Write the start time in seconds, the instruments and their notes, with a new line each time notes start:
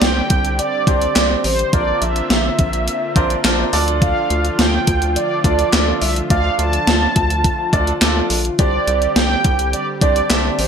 Already playing: analog synth pad D3 G3 C4 G4, grand piano C4 D4 G4 C5
0.02 analog synth bass C2, analog polysynth G5, snare, closed hi-hat
0.30 analog synth bass C2, kick, closed hi-hat
0.45 closed hi-hat
0.59 analog polysynth D5, closed hi-hat
0.87 analog synth bass C2, grand piano C4 D4 G4 C5, analog polysynth D5, kick, closed hi-hat
1.02 closed hi-hat
1.16 analog synth bass C2, grand piano C4 D4 G4 C5, snare, clap, closed hi-hat
1.44 analog synth bass A1, analog polysynth C5, open hi-hat
1.59 closed hi-hat
1.73 analog synth bass A#1, analog synth pad D3 A#3 C4 F4, grand piano D4 F4 A#4 C5, analog polysynth D5, kick, closed hi-hat
2.01 analog synth bass A#1, analog polysynth E5, closed hi-hat
2.16 closed hi-hat
2.30 analog synth bass A#1, snare, closed hi-hat
2.59 analog synth bass A#1, kick, closed hi-hat
2.73 closed hi-hat
2.88 closed hi-hat
3.16 analog synth bass A#1, grand piano D4 F4 A#4 C5, kick, closed hi-hat
3.30 closed hi-hat
3.44 analog synth bass A#1, grand piano D4 F4 A#4 C5, snare, clap, closed hi-hat
3.73 analog synth bass D2, analog synth pad F3 A3, grand piano D4 F4 A4 D5, open hi-hat
3.88 closed hi-hat
4.02 analog polysynth F5, kick, closed hi-hat
4.30 analog synth bass D2, closed hi-hat
4.45 closed hi-hat
4.59 analog synth bass D2, analog polysynth G5, snare, closed hi-hat
4.87 analog synth bass D2, kick, closed hi-hat
5.02 closed hi-hat
5.16 analog polysynth D5, closed hi-hat
5.44 analog synth bass D2, grand piano D4 F4 A4 D5, analog polysynth D5, kick, closed hi-hat
5.59 closed hi-hat
5.73 analog synth bass D2, grand piano D4 F4 A4 D5, snare, clap, closed hi-hat
6.02 analog synth bass C2, analog polysynth E5, open hi-hat
6.16 closed hi-hat
6.30 analog synth bass D2, grand piano D4 F4 A4 D5, analog polysynth F5, kick, closed hi-hat
6.59 analog synth bass D2, analog polysynth A5, closed hi-hat
6.73 closed hi-hat
6.87 analog synth bass D2, snare, closed hi-hat
7.16 analog synth bass D2, kick, closed hi-hat
7.30 closed hi-hat
7.44 kick, closed hi-hat
7.73 analog synth bass D2, grand piano D4 F4 A4 D5, kick, closed hi-hat
7.87 closed hi-hat
8.02 analog synth bass D2, grand piano D4 F4 A4 D5, snare, clap, closed hi-hat
8.30 analog synth bass A#1, open hi-hat
8.45 closed hi-hat
8.59 analog synth bass C2, analog synth pad D3 G3 C4 G4, grand piano D4 G4 C5 D5, analog polysynth D5, kick, closed hi-hat
8.88 analog synth bass C2, closed hi-hat
9.02 closed hi-hat
9.16 analog synth bass C2, analog polysynth G5, snare, closed hi-hat
9.44 analog synth bass C2, kick, closed hi-hat
9.59 closed hi-hat
9.73 analog polysynth D5, closed hi-hat
10.01 analog synth bass C2, grand piano D4 G4 C5 D5, analog polysynth D5, kick, closed hi-hat
10.16 closed hi-hat
10.30 analog synth bass C2, grand piano D4 G4 C5 E5, snare, clap, closed hi-hat
10.59 analog synth bass A1, analog polysynth C5, open hi-hat